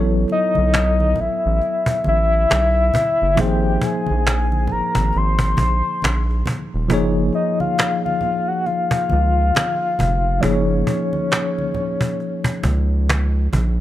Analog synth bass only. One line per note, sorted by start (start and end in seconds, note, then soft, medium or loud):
0.00 0.25 A1 loud
0.58 1.14 B1 medium
1.20 1.30 A1 soft
1.46 1.61 A1 medium
2.07 2.46 A1 medium
2.52 2.91 B1 medium
3.22 3.37 F#1 medium
3.39 3.78 G#1 loud
4.11 4.67 A#1 medium
4.72 4.82 G#1 soft
4.96 5.12 G#1 medium
5.16 5.55 G#1 loud
5.59 5.82 A#1 medium
6.04 6.43 A#1 medium
6.74 6.90 D#1 medium
6.91 7.31 F#1 loud
9.12 9.52 C#2 medium
10.01 10.40 F1 medium
10.44 10.84 F#1 loud
12.65 13.49 C#2 medium
13.54 13.80 A#1 medium